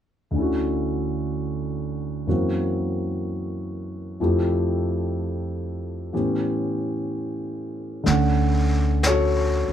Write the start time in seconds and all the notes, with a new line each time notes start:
0.31 D2 D3
0.36 C#4 E4
0.42 F#4
2.27 F#2 E3 A#3 C4 F#4
4.20 F2 F3 A3 E4 G4
6.13 A2 E3 B3 C#4 G4
8.03 D2 D3 A3 C#4, brush sweep, snare
8.08 F#5
9.03 C#5, brush sweep, snare, hi-hat pedal
9.07 F#4 A4
9.68 muted upright bass stroke